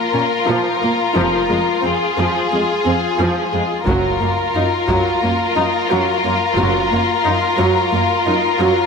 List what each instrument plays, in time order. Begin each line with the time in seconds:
Already playing: violin section F4 A#4
0.14 cello section A#2, viola section C#4
0.47 cello section A#2, viola section F3
0.83 cello section A#2, viola section A#3
1.16 double bass section F1, cello section F2, viola section F3
1.50 cello section F2, viola section G#3
1.84 cello section F2, viola section C4, violin section G#4
2.17 cello section F2, viola section F3
2.52 cello section F2, viola section G#3
2.86 cello section F2, viola section C4
3.19 cello section F2, viola section F3
3.53 cello section F2, viola section G#3
3.87 double bass section F#1, cello section F#2, viola section F#3, violin section F4 A#4, taiko
4.21 cello section F#2, viola section A#3
4.54 cello section F#2, viola section D#4
4.88 cello section F#2, viola section F#3, taiko
5.23 cello section F#2, viola section A#3
5.56 cello section F#2, viola section D#4
5.90 cello section F#2, viola section F#3
6.24 cello section F#2, viola section A#3
6.57 double bass section F#1, cello section F#2, viola section F#3
6.91 cello section F#2, viola section A#3
7.25 cello section F#2, viola section D#4
7.58 cello section F#2, viola section F#3
7.93 cello section F#2, viola section A#3
8.27 cello section F#2, viola section D#4
8.60 cello section F#2, viola section F#3